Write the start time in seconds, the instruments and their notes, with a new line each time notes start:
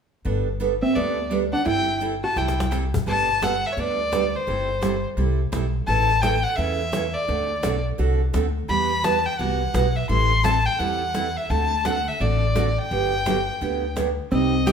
0.25 upright bass G1, steel-string acoustic guitar G3 B3 D4 A4
0.60 steel-string acoustic guitar G3 B3 D4 A4, cajon slap
0.82 hollow-body jazz guitar C4, fiddle E5
0.95 upright bass D2, steel-string acoustic guitar G3 B3 D4 A4, fiddle D5
1.31 steel-string acoustic guitar G3 B3 D4 A4, cajon slap
1.53 hollow-body jazz guitar D4, fiddle F#5
1.66 upright bass G1, steel-string acoustic guitar G3 C4 E4 A4, fiddle G5
2.01 steel-string acoustic guitar G3 C4 E4 A4, cajon slap
2.23 hollow-body jazz guitar F#4, fiddle A5
2.36 upright bass C2, steel-string acoustic guitar G3 C4 E4 A4, fiddle G5, cajon slap
2.48 cajon slap
2.60 cajon slap
2.71 steel-string acoustic guitar G3 C4 E4 A4, cajon slap
2.94 cajon bass
3.06 upright bass G1, steel-string acoustic guitar G3 B3 D4 A4, fiddle A5
3.42 steel-string acoustic guitar G3 B3 D4 A4, fiddle F#5, cajon slap
3.66 fiddle E5
3.73 fiddle C#5
3.77 upright bass D2, steel-string acoustic guitar G3 B3 D4 A4, fiddle D5
4.12 steel-string acoustic guitar G3 B3 D4 A4, cajon slap
4.36 fiddle C5
4.47 upright bass G1, steel-string acoustic guitar G3 C4 E4 A4
4.81 steel-string acoustic guitar G3 C4 E4 A4, cajon slap
5.17 upright bass C2, steel-string acoustic guitar G3 C4 E4 A4
5.52 upright bass B1, steel-string acoustic guitar G3 C4 E4 A4, cajon slap
5.87 upright bass A1, steel-string acoustic guitar C#3 E3 A3 C#4 A4, fiddle A5
6.22 steel-string acoustic guitar C#3 E3 A3 C#4 A4, fiddle G5, cajon slap
6.44 fiddle F#5
6.56 upright bass E2, steel-string acoustic guitar C#3 E3 A3 C#4 A4, fiddle E5
6.92 steel-string acoustic guitar C#3 E3 A3 C#4 A4, cajon slap
7.13 fiddle D5
7.28 upright bass D2, steel-string acoustic guitar D3 A3 C4 F#4 A4
7.63 upright bass B1, steel-string acoustic guitar D3 A3 C4 F#4 A4, cajon slap
7.98 upright bass C2, steel-string acoustic guitar D3 A3 C4 F#4 A4
8.33 upright bass D2, steel-string acoustic guitar D3 A3 C4 F#4 A4, cajon slap
8.68 upright bass E2, steel-string acoustic guitar E3 G3 B3 F#4, fiddle B5
9.03 steel-string acoustic guitar E3 G3 B3 F#4, fiddle A5, cajon slap
9.26 fiddle G5
9.39 upright bass C2, steel-string acoustic guitar E3 G3 B3 F#4, fiddle F#5
9.74 upright bass B1, steel-string acoustic guitar E3 G3 B3 F#4, cajon slap
9.96 fiddle E5
10.09 upright bass A1, steel-string acoustic guitar E3 G3 C4 E4 A4, fiddle C6
10.43 steel-string acoustic guitar E3 G3 C4 E4 A4, fiddle A5, cajon slap
10.66 fiddle G5
10.79 upright bass E2, steel-string acoustic guitar E3 G3 C4 E4 A4, fiddle F#5
11.14 steel-string acoustic guitar E3 G3 C4 E4 A4, cajon slap
11.37 fiddle E5
11.50 upright bass D2, steel-string acoustic guitar D3 A3 C4 F#4 A4, fiddle A5
11.85 steel-string acoustic guitar D3 A3 C4 F#4 A4, fiddle F#5, cajon slap
12.08 fiddle E5
12.20 upright bass A1, steel-string acoustic guitar D3 A3 C4 F#4 A4, fiddle D5
12.55 steel-string acoustic guitar D3 A3 C4 F#4 A4, cajon slap
12.79 fiddle G5
12.91 upright bass G1, steel-string acoustic guitar D3 F#3 B3 D4 G4
13.26 steel-string acoustic guitar D3 F#3 B3 D4 G4, cajon slap
13.61 upright bass D2, steel-string acoustic guitar D3 F#3 B3 D4 G4
13.96 steel-string acoustic guitar D3 F#3 B3 D4 G4, cajon slap
14.31 upright bass C2, steel-string acoustic guitar C3 G3 C4 D#4 G4, fiddle D#5
14.66 steel-string acoustic guitar C3 G3 C4 D#4 G4, fiddle G5, cajon slap